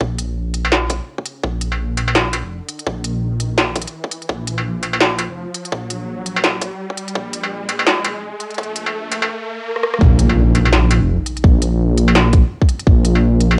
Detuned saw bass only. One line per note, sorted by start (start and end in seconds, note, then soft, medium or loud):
0.00 0.99 A#1 medium
1.43 2.42 A#1 medium
2.44 2.60 F1 medium
2.87 3.85 A#1 loud
4.29 5.28 A#1 loud
5.29 5.45 F1 medium
5.72 6.71 A#1 loud
7.15 8.14 A#1 loud
8.15 8.31 F1 medium
8.58 9.30 A#1 loud
10.01 11.00 A#1 loud
11.01 11.17 F1 medium
11.44 12.42 A#1 loud
12.87 13.59 A#1 loud